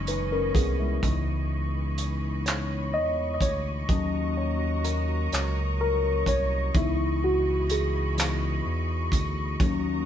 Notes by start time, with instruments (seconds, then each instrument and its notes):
Already playing: analog synth bass F#1, tine electric piano E3 G#3 B3 C#4 D#4, string section C#4 D#5 B5 C#6
0.07 tine electric piano D#4 B4, closed hi-hat
0.32 tine electric piano C#4 A#4
0.55 analog synth bass C2, tine electric piano B3 G#4, kick, closed hi-hat
0.80 tine electric piano G#3 E4
1.03 analog synth bass C#2, tine electric piano E3 B3 D#4, string section E3 D#5 B5 C#6, kick, closed hi-hat
1.98 closed hi-hat
2.46 tine electric piano C#5, clap, closed hi-hat
2.94 analog synth bass E2, tine electric piano D#5
3.34 tine electric piano D#5
3.41 analog synth bass D2, tine electric piano C#5, kick, closed hi-hat
3.89 analog synth bass D#2, tine electric piano F#3 A#3 C#4 D#5, string section F#4 A#5, kick, closed hi-hat
4.37 tine electric piano C#5
4.84 tine electric piano A#4, closed hi-hat
5.32 analog synth bass C#2, tine electric piano C#5, clap, closed hi-hat
5.81 tine electric piano A#4
6.26 analog synth bass C2, tine electric piano C#5, kick, closed hi-hat
6.74 analog synth bass C#2, tine electric piano E3 B3 D#4 E4, string section E3 B5, kick, closed hi-hat
7.24 tine electric piano F#4
7.70 tine electric piano G#4, closed hi-hat
8.17 tine electric piano E3 B3 D#4, clap, closed hi-hat
8.66 analog synth bass E2
9.12 analog synth bass D2, kick, closed hi-hat
9.60 analog synth bass D#2, tine electric piano F#3 A#3 C#4, string section F#4 A#5, kick, closed hi-hat